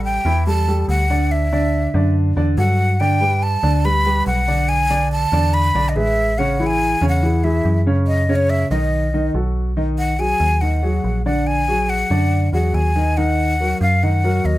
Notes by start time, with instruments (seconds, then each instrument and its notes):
Already playing: fm bass A1, grand piano G3 G4 A4
0.04 flute G5
0.25 fm bass E2, grand piano E3 E4 E5
0.47 grand piano G3 G4 A4, flute A5
0.68 grand piano G3 G4 A4
0.88 fm bass D2, flute F#5
1.10 grand piano D3 D4 D5
1.31 flute E5
1.52 grand piano D3 D4 D5
1.94 fm bass F#2, grand piano D3 D4 D5
2.36 fm bass E2, grand piano D3 D4 D5
2.57 fm bass G2, grand piano F#3 F#4 A4, flute F#5
3.00 grand piano D3 D4 D5, flute G5
3.21 grand piano G3 G4 B4
3.43 flute A5
3.63 fm bass D2, grand piano D3 D4 D5
3.84 grand piano G3 G4 B4, flute B5
4.06 grand piano G3 G4 B4
4.27 fm bass B1, flute F#5
4.48 grand piano D3 D4 D5
4.69 flute G#5
4.90 grand piano D3 D4 D5
5.12 flute A5
5.32 fm bass E2, grand piano D3 D4 D5
5.54 flute B5
5.74 fm bass B1, grand piano D3 D4 D5
5.89 flute D#5
5.96 fm bass A1, grand piano G#3 G#4 B4, flute E5
6.38 grand piano C#3 C#4 C#5, flute F#5
6.59 grand piano E3 E4 G#4
6.66 flute G#5
7.01 fm bass E2, grand piano C#3 C#4 C#5
7.09 flute F#5
7.23 grand piano E3 E4 G#4
7.44 grand piano E3 E4 G#4, flute E5
7.65 fm bass F#2
7.86 grand piano C#3 C#4 C#5
8.07 flute D#5
8.29 grand piano C#3 C#4 C#5
8.35 flute C#5
8.50 flute E5
8.71 fm bass B1, grand piano D#3 D#4 D#5, flute D#5
9.14 grand piano D#3 D#4 D#5
9.34 fm bass B1, grand piano F#3 F#4 A4
9.77 grand piano D#3 D#4 D#5
9.99 flute F#5
10.19 grand piano F#3 F#4 G#4, flute G#5
10.40 fm bass D#2
10.61 grand piano D#3 D#4 D#5, flute F#5
10.83 grand piano F#3 F#4 G#4
11.04 fm bass A#1
11.26 grand piano D3 D4 D5, flute F#5
11.47 flute G#5
11.68 grand piano F#3 F#4 G#4
11.89 flute F#5
12.10 fm bass F#2, grand piano D3 D4 D5
12.53 fm bass E2, grand piano F#3 F#4 G#4, flute F#5
12.74 fm bass D#2, flute G#5
12.95 grand piano D#3 D#4 D#5
13.17 grand piano D#3 D#4 D#5, flute F#5
13.60 grand piano F#3 F#4 A#4
13.81 fm bass F#2, flute F5
14.03 grand piano D#3 D#4 D#5, flute F#5
14.24 grand piano F#3 F#4 A#4
14.45 fm bass D#2, flute D#5